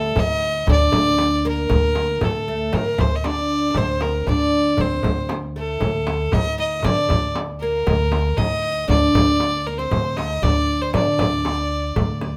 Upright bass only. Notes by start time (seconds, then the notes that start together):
Already playing: D2
0.16 D2
0.67 D2
0.94 D2
1.71 D2
2.21 D2
2.73 D3
2.99 D2
3.75 D2
4.27 D2
4.79 D2
5.04 D2
5.81 D2
6.33 D2
6.84 D3
7.10 D2
7.87 D2
8.38 D2
8.89 D2
9.15 D2
9.91 D2
10.43 D2
10.94 D3
11.19 D2
11.96 D2